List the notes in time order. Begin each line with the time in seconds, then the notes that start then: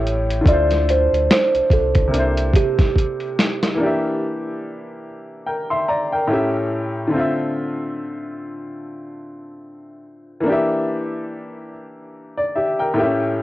Already playing: A1 A2 A3 E4 G4 C#5
0.07 closed hi-hat
0.30 closed hi-hat
0.41 D3 A3
0.46 D2 E4 D5, kick, closed hi-hat
0.50 F4 C5
0.71 snare, closed hi-hat
0.89 C5, closed hi-hat
1.12 D2, closed hi-hat
1.31 C5, snare, closed hi-hat
1.54 C2, closed hi-hat
1.70 C2 A4, kick, closed hi-hat
1.95 kick, closed hi-hat
2.08 C3 A#3
2.14 C2 D4 E4, closed hi-hat
2.19 C5
2.37 closed hi-hat
2.54 G4, kick, closed hi-hat
2.79 kick, snare, closed hi-hat
2.96 kick, closed hi-hat
3.20 closed hi-hat
3.39 snare, closed hi-hat
3.63 snare, closed hi-hat
3.74 E3 A#3
3.80 D4 G4
3.86 E5
5.46 A#4 G5
5.70 E5 C6
5.88 D5 A#5
6.12 A#4 G5
6.27 A2 A3 C#4
6.32 G4 E5
7.08 D3 A3
7.14 C4 F4
7.19 E5
10.40 E3 A#3
10.46 D4 G4
10.52 E5
12.37 D5
12.55 G4 E5
12.79 A#4 G5
12.94 A2 A3 A#3
12.98 G4 E5
13.03 C#4